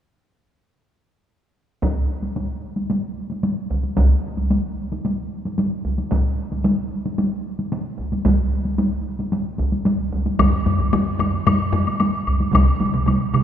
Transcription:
1.83 taiko, taiko high
2.23 taiko high
2.36 taiko high
2.76 taiko high
2.90 taiko high
3.30 taiko high
3.43 taiko high
3.70 taiko
3.84 taiko high
3.97 taiko, taiko high
4.37 taiko high
4.50 taiko high
4.92 taiko high
5.05 taiko high
5.45 taiko high
5.58 taiko high
5.85 taiko
5.98 taiko high
6.12 taiko, taiko high
6.52 taiko high
6.65 taiko high
7.06 taiko high
7.18 taiko high
7.59 taiko high
7.72 taiko high
7.98 taiko
8.12 taiko high
8.25 taiko, taiko high
8.65 taiko high
8.78 taiko high
9.19 taiko high
9.32 taiko high
9.58 taiko, taiko high
9.72 taiko high
9.85 taiko high
10.13 taiko
10.26 taiko high
10.39 taiko, taiko low-mid, taiko high, high woodblock
10.66 taiko low-mid, taiko high
10.79 taiko low-mid, taiko high
10.93 taiko low-mid, taiko high, high woodblock
11.19 taiko low-mid, taiko high, high woodblock
11.34 taiko high
11.47 taiko low-mid, taiko high, high woodblock
11.73 taiko low-mid, taiko high
11.87 taiko high, high woodblock
12.00 taiko high, high woodblock
12.27 taiko, high woodblock
12.40 taiko high
12.53 taiko, taiko mid, taiko high, high woodblock
12.79 taiko mid, taiko high
12.94 taiko mid, taiko high
13.06 taiko mid, taiko high, high woodblock
13.34 taiko mid, taiko high, high woodblock

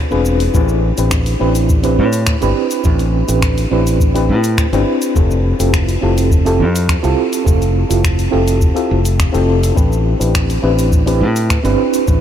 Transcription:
0.11 E1 C4 D4 F4 G#4 B4, shaker
0.25 shaker
0.40 open hi-hat, shaker
0.53 A1 C4 D4 E4 G4 B4, kick, shaker
0.69 shaker
0.98 A1 C4 D4 E4 G4 B4, open hi-hat, shaker
1.11 finger snap, kick, shaker
1.26 open hi-hat, shaker
1.39 A1 C4 D4 E4 G4 B4
1.55 open hi-hat, shaker
1.69 kick, shaker
1.83 C4 D4 E4 G4 B4, open hi-hat, shaker
1.99 A2
2.13 open hi-hat, shaker
2.27 finger snap, kick, shaker
2.41 G1 C4 D4 E4 G4 B4, open hi-hat, shaker
2.71 open hi-hat, shaker
2.84 A1 C4 D4 E4 G4 B4, kick, shaker
2.99 open hi-hat, shaker
3.27 A1 C4 D4 E4 G4 B4, open hi-hat, shaker
3.42 finger snap, kick, shaker
3.58 open hi-hat, shaker
3.71 A1 C4 D4 E4 G4 B4
3.87 open hi-hat, shaker
4.00 kick, shaker
4.14 C4 D4 E4 G4 B4, open hi-hat, shaker
4.29 A2
4.44 open hi-hat, shaker
4.58 finger snap, kick, shaker
4.73 G1 C4 D4 E4 G4 B4, open hi-hat, shaker
5.02 open hi-hat, shaker
5.15 F1 C4 E4 F4 G4 A4, kick, shaker
5.31 shaker
5.59 F1 C4 E4 F4 G4 A4, open hi-hat, shaker
5.73 finger snap, kick, shaker
5.89 open hi-hat, shaker
6.01 F1 C4 E4 F4 G4 A4
6.18 open hi-hat, shaker
6.31 kick, shaker
6.45 C4 E4 F4 G4 A4, open hi-hat, shaker
6.60 F2
6.76 open hi-hat, shaker
6.89 finger snap, kick, shaker
7.03 C2 C4 E4 F4 G4 A4, open hi-hat, shaker
7.33 open hi-hat, shaker
7.44 F1 C4 E4 F4 G4 A4, kick, shaker
7.62 open hi-hat, shaker
7.89 F1 C4 E4 F4 G4 A4, open hi-hat, shaker
8.04 finger snap, kick, shaker
8.19 open hi-hat, shaker
8.31 F1 C4 E4 F4 G4 A4
8.48 open hi-hat, shaker
8.61 kick, shaker
8.74 C4 E4 F4 G4 A4, open hi-hat, shaker
8.91 F1
9.05 open hi-hat, shaker
9.19 finger snap, kick, shaker
9.32 F1 C4 E4 F4 G4 A4, open hi-hat, shaker
9.63 open hi-hat, shaker
9.75 A1 C4 D4 E4 G4 B4, kick, shaker
9.92 shaker
10.19 A1 C4 D4 E4 G4 B4, open hi-hat, shaker
10.35 finger snap, kick, shaker
10.50 open hi-hat, shaker
10.62 A1 C4 D4 E4 G4 B4
10.79 open hi-hat, shaker
10.92 kick, shaker
11.06 C4 D4 E4 G4 B4, open hi-hat, shaker
11.21 A2
11.36 open hi-hat, shaker
11.50 finger snap, kick, shaker
11.63 G1 C4 D4 E4 G4 B4, open hi-hat, shaker
11.94 open hi-hat, shaker
12.06 A1 C4 D4 E4 G4 B4, kick, shaker

